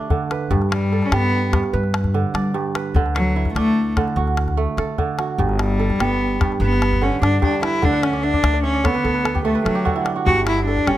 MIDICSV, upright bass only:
0, 0, Header, 1, 2, 480
1, 0, Start_track
1, 0, Tempo, 406780
1, 592, Time_signature, 12, 3, 24, 8
1, 12950, End_track
2, 0, Start_track
2, 0, Title_t, "Upright bass"
2, 0, Program_c, 0, 32
2, 596, Note_on_c, 0, 43, 102
2, 1169, Note_off_c, 0, 43, 0
2, 1319, Note_on_c, 0, 43, 80
2, 1891, Note_off_c, 0, 43, 0
2, 2047, Note_on_c, 0, 43, 104
2, 2616, Note_off_c, 0, 43, 0
2, 2760, Note_on_c, 0, 55, 90
2, 2950, Note_off_c, 0, 55, 0
2, 3474, Note_on_c, 0, 38, 103
2, 4049, Note_off_c, 0, 38, 0
2, 4186, Note_on_c, 0, 38, 82
2, 4764, Note_off_c, 0, 38, 0
2, 4908, Note_on_c, 0, 38, 102
2, 5486, Note_off_c, 0, 38, 0
2, 5632, Note_on_c, 0, 50, 89
2, 5825, Note_off_c, 0, 50, 0
2, 6353, Note_on_c, 0, 31, 105
2, 6928, Note_off_c, 0, 31, 0
2, 7071, Note_on_c, 0, 31, 85
2, 7647, Note_off_c, 0, 31, 0
2, 7785, Note_on_c, 0, 31, 106
2, 8364, Note_off_c, 0, 31, 0
2, 8515, Note_on_c, 0, 43, 95
2, 8707, Note_off_c, 0, 43, 0
2, 9230, Note_on_c, 0, 38, 95
2, 9806, Note_off_c, 0, 38, 0
2, 9950, Note_on_c, 0, 38, 87
2, 10525, Note_off_c, 0, 38, 0
2, 10674, Note_on_c, 0, 38, 99
2, 11247, Note_off_c, 0, 38, 0
2, 11393, Note_on_c, 0, 50, 91
2, 11584, Note_off_c, 0, 50, 0
2, 12109, Note_on_c, 0, 31, 104
2, 12683, Note_off_c, 0, 31, 0
2, 12825, Note_on_c, 0, 31, 80
2, 12950, Note_off_c, 0, 31, 0
2, 12950, End_track
0, 0, End_of_file